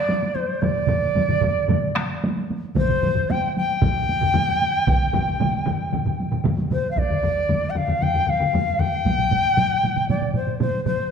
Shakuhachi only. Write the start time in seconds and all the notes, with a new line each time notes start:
Already playing: D5
0.34 C5
0.61 D5
2.76 C5
3.30 G5
3.57 G5
6.72 C5
6.91 F5
6.98 D5
7.70 G5
7.76 F5
8.02 G5
8.29 F5
8.79 G5
10.09 D5
10.35 C5
10.60 C5
10.86 C5